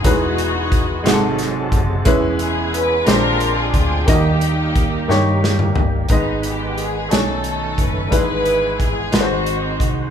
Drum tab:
HH |x-x-x-x-x-x-|x-x-x-x-x-x-|x-x-x-------|x-x-x-x-x-x-|
SD |------o-o---|------o-----|------o-o---|------o-----|
T2 |------------|------------|---------o--|------------|
FT |------------|------------|----------o-|------------|
BD |o---o-----o-|o---------o-|o---o-------|o---------o-|

HH |x-x-x-x-x-x-|
SD |------o-----|
T2 |------------|
FT |------------|
BD |o---o-----o-|